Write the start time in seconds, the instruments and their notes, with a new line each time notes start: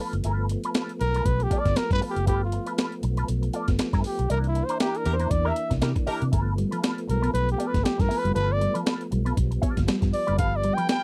Already playing: tonewheel organ F3 A3 B3
0.00 clean electric guitar F4 A4 B4
0.13 fingered electric bass F#1, muted clean electric guitar stroke, closed hi-hat
0.24 fingered electric bass G1, clean electric guitar F4 A4 B4, closed hi-hat
0.49 muted clean electric guitar stroke, closed hi-hat
0.64 clean electric guitar F4 A4 B4, closed hi-hat
0.74 clean electric guitar F4 A4 B4, snare, closed hi-hat
0.89 closed hi-hat
1.00 fingered electric bass B1, trumpet A#4, muted clean electric guitar stroke, closed hi-hat
1.14 clean electric guitar F4 A4 B4, closed hi-hat
1.26 fingered electric bass B1, trumpet B4, muted clean electric guitar stroke, kick, closed hi-hat
1.40 trumpet G4, muted clean electric guitar stroke, closed hi-hat
1.50 clean electric guitar F4 A4 D5, kick, closed hi-hat
1.60 trumpet D5
1.65 fingered electric bass G1, muted clean electric guitar stroke, kick, snare, closed hi-hat
1.76 trumpet A#4, muted clean electric guitar stroke, snare, closed hi-hat
1.91 fingered electric bass G2, trumpet B4, muted clean electric guitar stroke, kick, snare, closed hi-hat
2.01 clean electric guitar F4 A4 B4, open hi-hat
2.10 trumpet G4
2.16 fingered electric bass F#1, muted clean electric guitar stroke, closed hi-hat
2.26 fingered electric bass G1, clean electric guitar F4 A4 B4, trumpet G4, kick, closed hi-hat
2.45 trumpet F4
2.52 muted clean electric guitar stroke, closed hi-hat
2.66 clean electric guitar F4 A4 B4, closed hi-hat
2.77 clean electric guitar F4 A4 B4, snare, closed hi-hat
2.92 closed hi-hat
3.03 fingered electric bass B1, muted clean electric guitar stroke, closed hi-hat
3.17 clean electric guitar F4 A4 B4, closed hi-hat
3.28 fingered electric bass B1, muted clean electric guitar stroke, closed hi-hat
3.43 muted clean electric guitar stroke, closed hi-hat
3.53 clean electric guitar F4 A4 D5, closed hi-hat
3.68 fingered electric bass G1, muted clean electric guitar stroke, kick, snare, closed hi-hat
3.79 muted clean electric guitar stroke, snare, closed hi-hat
3.93 fingered electric bass G2, clean electric guitar F4 A4 B4, kick, snare, closed hi-hat
4.04 trumpet G4, muted clean electric guitar stroke, open hi-hat
4.19 fingered electric bass B1, muted clean electric guitar stroke, closed hi-hat
4.30 fingered electric bass C2, tonewheel organ E3 A#3 D4, clean electric guitar D4 E4 A#4, trumpet A#4, closed hi-hat
4.44 trumpet E4, closed hi-hat
4.55 muted clean electric guitar stroke, closed hi-hat
4.65 trumpet C5, closed hi-hat
4.69 clean electric guitar D4 E4 A#4
4.80 clean electric guitar D4 E4 A#4, trumpet G4, snare, closed hi-hat
4.95 trumpet A#4, closed hi-hat
5.06 fingered electric bass E2, horn section E4 G4 A#4, muted clean electric guitar stroke, closed hi-hat
5.14 trumpet C5
5.19 clean electric guitar D4 E4 A#4, closed hi-hat
5.31 fingered electric bass E2, trumpet D5, muted clean electric guitar stroke, kick, closed hi-hat
5.45 clean electric guitar D4 E4 A#4, horn section E4 G4 A#4, trumpet E5
5.56 muted clean electric guitar stroke, closed hi-hat
5.70 fingered electric bass C2, muted clean electric guitar stroke, kick, snare, closed hi-hat
5.81 fingered electric bass C3, horn section E4 G4 A#4, muted clean electric guitar stroke, snare, closed hi-hat
5.95 muted clean electric guitar stroke, kick, closed hi-hat
6.07 clean electric guitar D4 E4 A#4, horn section E4 G4 A#4, muted fingered electric bass stroke, open hi-hat
6.21 fingered electric bass C3, muted clean electric guitar stroke, closed hi-hat
6.32 fingered electric bass G1, tonewheel organ F3 A3 B3, clean electric guitar F4 A4 B4, kick, closed hi-hat
6.47 muted clean electric guitar stroke
6.57 clean electric guitar G3, muted clean electric guitar stroke, closed hi-hat
6.71 clean electric guitar F3 F4 A4 B4, closed hi-hat
6.82 clean electric guitar F4 A4 B4, muted clean electric guitar stroke, snare, closed hi-hat
6.98 closed hi-hat
7.08 fingered electric bass B1, clean electric guitar G3, trumpet A#4, muted clean electric guitar stroke, closed hi-hat
7.22 clean electric guitar B3 F4 A4 B4, closed hi-hat
7.34 fingered electric bass B1, trumpet B4, muted clean electric guitar stroke, closed hi-hat
7.49 trumpet G4, closed hi-hat
7.58 clean electric guitar B3 F4 A4 D5, closed hi-hat
7.67 trumpet B4
7.73 fingered electric bass G1, clean electric guitar A#3, muted clean electric guitar stroke, kick, snare, closed hi-hat
7.83 trumpet G4, muted clean electric guitar stroke, snare, closed hi-hat
7.98 fingered electric bass G2, trumpet A#4, muted clean electric guitar stroke, kick, snare, closed hi-hat
8.09 clean electric guitar B3 F4 A4 B4, open hi-hat
8.18 trumpet B4
8.24 fingered electric bass F#1, clean electric guitar G3, muted clean electric guitar stroke, closed hi-hat
8.34 fingered electric bass G1, clean electric guitar F4 A4 B4, trumpet B4, closed hi-hat
8.50 trumpet D5, muted clean electric guitar stroke
8.60 clean electric guitar G3, muted clean electric guitar stroke, closed hi-hat
8.74 clean electric guitar F3 F4 A4 B4, closed hi-hat
8.86 clean electric guitar F4 A4 B4, muted clean electric guitar stroke, snare, closed hi-hat
9.01 closed hi-hat
9.11 fingered electric bass B1, clean electric guitar G3, muted clean electric guitar stroke, closed hi-hat
9.25 clean electric guitar B3 F4 A4 B4, closed hi-hat
9.37 fingered electric bass B1, tonewheel organ G3, muted clean electric guitar stroke, kick, closed hi-hat
9.51 muted clean electric guitar stroke, closed hi-hat
9.62 clean electric guitar B3 F4 A4 D5, kick, closed hi-hat
9.77 fingered electric bass G1, clean electric guitar A#3, muted clean electric guitar stroke, kick, snare, closed hi-hat
9.87 clean electric guitar G3, muted clean electric guitar stroke, snare, closed hi-hat
10.01 fingered electric bass G2, muted clean electric guitar stroke, kick, snare, closed hi-hat
10.13 trumpet D5, muted clean electric guitar stroke, open hi-hat
10.27 fingered electric bass F#1, clean electric guitar G3 F4 A4 B4, closed hi-hat
10.37 fingered electric bass G1, clean electric guitar F4 A4 B4, trumpet F5, kick, closed hi-hat
10.53 trumpet D5, muted clean electric guitar stroke
10.63 clean electric guitar G3, muted clean electric guitar stroke, closed hi-hat
10.74 clean electric guitar F3 A4 B4, trumpet G5, closed hi-hat
10.79 clean electric guitar F4
10.88 clean electric guitar F4 A4 B4, trumpet G5, snare, closed hi-hat